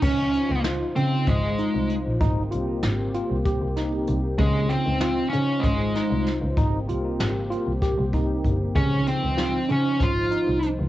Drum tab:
CC |x------|-------|-------|-------|
HH |-xxxxxx|xxxxxxx|xxxxxxx|xxxxxxx|
SD |--o----|--o--o-|--o--oo|--o-o--|
BD |o---o--|o---o--|o---o--|o---ooo|

CC |-------|
HH |xxxxxxx|
SD |--o-o--|
BD |o---o--|